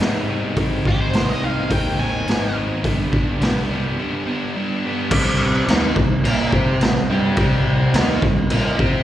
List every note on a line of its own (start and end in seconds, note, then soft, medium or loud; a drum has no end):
0.00 0.42 G#2 medium
0.00 0.29 C3 medium
0.00 0.29 G3 medium
0.00 0.29 C4 medium
0.00 0.29 D#4 loud
0.00 snare loud
0.00 open hi-hat soft
0.30 0.56 C3 medium
0.30 0.56 G3 medium
0.30 0.56 C4 medium
0.30 0.56 D#4 medium
0.56 0.77 G#1 medium
0.56 0.85 G#2 medium
0.56 0.85 D#3 loud
0.56 0.86 G#3 medium
0.56 0.86 C4 loud
0.56 0.87 D#4 loud
0.56 kick medium
0.56 open hi-hat soft
0.85 1.06 G#1 medium
0.85 1.12 G#2 medium
0.85 1.13 D#3 medium
0.85 1.13 G#3 medium
0.85 1.13 C4 medium
0.85 1.14 D#4 medium
0.85 1.00 G4 medium
0.85 kick medium
1.02 1.28 C5 medium
1.13 1.35 C2 medium
1.13 1.40 G#2 medium
1.13 1.40 D#3 medium
1.13 1.41 G#3 medium
1.13 1.41 C4 loud
1.13 1.41 D#4 loud
1.13 snare loud
1.13 open hi-hat medium
1.30 1.44 D#5 medium
1.41 1.63 C2 medium
1.41 1.68 G#2 medium
1.41 1.69 D#3 medium
1.41 1.69 G#3 medium
1.41 1.69 C4 medium
1.41 1.70 D#4 medium
1.41 1.71 F5 medium
1.69 1.91 D#2 medium
1.69 1.98 G#2 medium
1.69 1.98 D#3 medium
1.69 1.98 G#3 medium
1.69 1.98 C4 medium
1.69 1.99 D#4 medium
1.69 1.99 G5 medium
1.69 kick loud
1.69 open hi-hat medium
1.99 2.20 D#2 medium
1.99 2.26 G#2 medium
1.99 2.26 D#3 medium
1.99 2.26 G#3 medium
1.99 2.27 C4 medium
1.99 2.27 D#4 medium
1.99 2.55 G#5 medium
2.26 2.68 G#1 medium
2.26 2.53 G#2 medium
2.26 2.54 D#3 medium
2.26 2.54 G#3 medium
2.26 2.54 C4 medium
2.26 2.55 D#4 medium
2.26 snare medium
2.26 open hi-hat soft
2.54 2.82 G#2 medium
2.54 2.82 D#3 medium
2.54 2.82 G#3 medium
2.54 2.82 C4 medium
2.54 2.83 D#4 medium
2.84 3.05 G1 medium
2.84 3.11 G2 medium
2.84 3.12 D3 loud
2.84 3.12 G3 medium
2.84 3.12 B3 medium
2.84 3.12 D4 loud
2.84 kick loud
2.84 open hi-hat medium
3.13 3.34 G1 medium
3.13 3.39 G2 medium
3.13 3.39 D3 medium
3.13 3.40 G3 medium
3.13 3.40 B3 medium
3.13 3.40 D4 medium
3.13 kick medium
3.40 3.62 C2 medium
3.40 3.69 G2 medium
3.40 3.69 D3 medium
3.40 3.69 G3 medium
3.40 3.69 B3 loud
3.40 3.70 D4 loud
3.40 snare loud
3.40 open hi-hat soft
3.69 3.90 C2 medium
3.69 3.97 G2 medium
3.69 3.97 D3 medium
3.69 3.98 G3 medium
3.69 3.98 B3 medium
3.69 3.98 D4 medium
3.98 4.25 G2 medium
3.98 4.25 D3 medium
3.98 4.25 G3 medium
3.98 4.26 B3 medium
3.98 4.26 D4 medium
4.26 4.54 G2 medium
4.26 4.55 D3 medium
4.26 4.56 G3 medium
4.26 4.56 B3 medium
4.26 4.56 D4 medium
4.56 4.83 G2 medium
4.56 4.84 D3 medium
4.56 4.84 G3 medium
4.56 4.85 B3 loud
4.56 4.85 D4 medium
4.85 5.11 G2 medium
4.85 5.11 D3 medium
4.85 5.11 G3 medium
4.85 5.11 B3 medium
4.85 5.11 D4 medium
5.11 5.64 C2 medium
5.11 5.68 C3 medium
5.11 5.68 G3 medium
5.11 5.68 C4 loud
5.11 kick loud
5.11 crash loud
5.11 crash medium
5.68 5.95 D#2 loud
5.68 5.96 D#3 medium
5.68 5.96 A#3 medium
5.68 5.96 D#4 medium
5.68 snare loud
5.68 crash medium
5.96 6.23 C2 medium
5.96 6.20 C3 medium
5.96 6.20 G3 medium
5.96 kick loud
6.24 6.51 A#2 medium
6.24 6.52 A#3 loud
6.24 6.52 F4 medium
6.24 6.52 A#4 loud
6.24 crash medium
6.52 6.79 C3 medium
6.52 6.80 C4 loud
6.52 6.81 G4 medium
6.52 6.81 C5 loud
6.52 kick medium
6.81 7.08 C2 medium
6.81 7.04 C3 medium
6.81 7.05 G3 medium
6.81 snare loud
6.81 crash medium
7.09 7.36 G2 medium
7.09 7.37 G3 loud
7.09 7.38 D4 loud
7.09 7.38 G4 loud
7.37 7.90 C2 medium
7.37 7.94 C3 loud
7.37 7.94 G3 loud
7.37 7.94 C4 loud
7.37 kick loud
7.37 crash medium
7.94 8.21 D#2 loud
7.94 8.22 D#3 medium
7.94 8.22 A#3 medium
7.94 8.22 D#4 loud
7.94 snare loud
7.94 crash medium
8.22 8.49 C2 medium
8.22 8.46 C3 medium
8.22 8.46 G3 medium
8.22 kick medium
8.50 8.77 A#2 loud
8.50 8.78 A#3 loud
8.50 8.78 F4 loud
8.50 8.79 A#4 loud
8.50 crash medium
8.79 9.03 C3 medium
8.79 9.03 C4 loud
8.79 9.03 G4 medium
8.79 9.03 C5 loud
8.79 kick medium